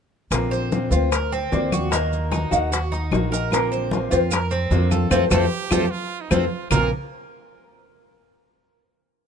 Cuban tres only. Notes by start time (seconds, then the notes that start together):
0.51 C5
0.92 F4
1.12 A#4
1.32 C4
1.72 F#4
1.92 A#3
2.32 D#4
2.72 F#4
2.92 D#4
3.32 A#4
3.72 C5
4.11 F4
4.31 A#4
4.51 C4
4.91 A4
5.11 C4 F4 A4
5.31 C4 F4 A4
5.72 C4 F4 A4
6.31 C4 F4 A4
6.71 A#3 F4 A#4